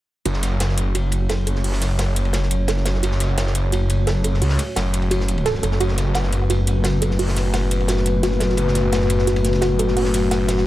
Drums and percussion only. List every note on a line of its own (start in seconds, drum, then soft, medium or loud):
0.25 closed hi-hat medium
0.25 ride medium
0.34 snare soft
0.43 snare soft
0.43 closed hi-hat medium
0.43 ride medium
0.60 snare loud
0.60 closed hi-hat medium
0.60 ride medium
0.69 snare medium
0.77 closed hi-hat medium
0.77 ride medium
0.95 closed hi-hat medium
0.95 ride medium
1.12 closed hi-hat medium
1.12 ride medium
1.29 snare loud
1.29 closed hi-hat medium
1.29 ride medium
1.47 closed hi-hat medium
1.47 ride medium
1.56 snare soft
1.64 closed hi-hat medium
1.64 open hi-hat medium
1.72 snare medium
1.81 snare soft
1.81 closed hi-hat medium
1.81 ride medium
1.99 snare loud
1.99 closed hi-hat medium
1.99 ride medium
2.16 closed hi-hat medium
2.16 ride medium
2.25 ride soft
2.33 snare loud
2.33 closed hi-hat medium
2.33 ride medium
2.43 snare soft
2.51 closed hi-hat medium
2.51 ride medium
2.68 snare loud
2.68 closed hi-hat medium
2.68 ride medium
2.77 snare soft
2.85 snare loud
2.85 closed hi-hat medium
2.85 ride medium
2.94 snare soft
3.03 closed hi-hat medium
3.03 ride medium
3.12 snare soft
3.20 snare soft
3.20 closed hi-hat medium
3.20 ride medium
3.38 snare loud
3.38 closed hi-hat medium
3.38 ride medium
3.47 snare medium
3.55 closed hi-hat medium
3.55 ride medium
3.72 closed hi-hat medium
3.72 ride medium
3.90 closed hi-hat medium
3.90 ride medium
4.07 snare loud
4.07 closed hi-hat medium
4.07 ride medium
4.24 closed hi-hat medium
4.24 ride medium
4.34 snare soft
4.42 closed hi-hat medium
4.42 open hi-hat medium
4.49 snare medium
4.58 snare soft
4.58 closed hi-hat medium
4.58 ride medium
4.76 snare loud
4.76 closed hi-hat medium
4.76 ride medium
4.94 closed hi-hat medium
4.94 ride medium
5.02 ride soft
5.11 closed hi-hat medium
5.11 ride medium
5.20 snare soft
5.28 closed hi-hat medium
5.28 ride medium
5.38 ride soft
5.46 snare loud
5.46 closed hi-hat medium
5.46 ride medium
5.54 snare soft
5.63 closed hi-hat medium
5.63 ride medium
5.72 snare soft
5.80 closed hi-hat medium
5.80 ride medium
5.89 snare soft
5.98 snare soft
5.98 closed hi-hat medium
5.98 ride medium
6.14 snare loud
6.14 closed hi-hat medium
6.14 ride medium
6.23 snare medium
6.33 closed hi-hat medium
6.33 ride medium
6.50 closed hi-hat medium
6.50 ride medium
6.67 closed hi-hat medium
6.67 ride medium
6.84 snare loud
6.84 closed hi-hat medium
6.84 ride medium
7.02 closed hi-hat medium
7.02 ride medium
7.11 snare soft
7.19 closed hi-hat medium
7.19 open hi-hat medium
7.29 snare soft
7.37 snare soft
7.37 closed hi-hat medium
7.37 ride medium
7.53 snare loud
7.53 closed hi-hat medium
7.53 ride medium
7.71 closed hi-hat medium
7.71 ride medium
7.80 ride soft
7.88 snare loud
7.88 closed hi-hat medium
7.88 ride medium
7.97 snare soft
8.06 closed hi-hat medium
8.06 ride medium
8.23 snare medium
8.23 closed hi-hat medium
8.23 ride medium
8.32 snare soft
8.40 snare loud
8.40 closed hi-hat medium
8.40 ride medium
8.49 snare soft
8.57 closed hi-hat medium
8.57 ride medium
8.68 snare soft
8.75 snare soft
8.75 closed hi-hat medium
8.75 ride medium
8.92 snare loud
8.92 closed hi-hat medium
8.92 ride medium
9.02 snare soft
9.10 closed hi-hat medium
9.10 ride medium
9.19 snare soft
9.27 snare soft
9.27 closed hi-hat medium
9.27 ride medium
9.36 ride medium
9.45 snare soft
9.45 closed hi-hat medium
9.53 snare soft
9.53 ride medium
9.62 snare loud
9.62 closed hi-hat medium
9.62 ride medium
9.79 closed hi-hat medium
9.79 ride medium
9.88 snare soft
9.97 closed hi-hat medium
9.97 open hi-hat medium
10.05 snare soft
10.14 snare soft
10.14 closed hi-hat medium
10.14 ride medium
10.31 snare loud
10.31 closed hi-hat medium
10.31 ride medium
10.48 snare loud
10.48 closed hi-hat medium
10.48 ride medium
10.57 snare medium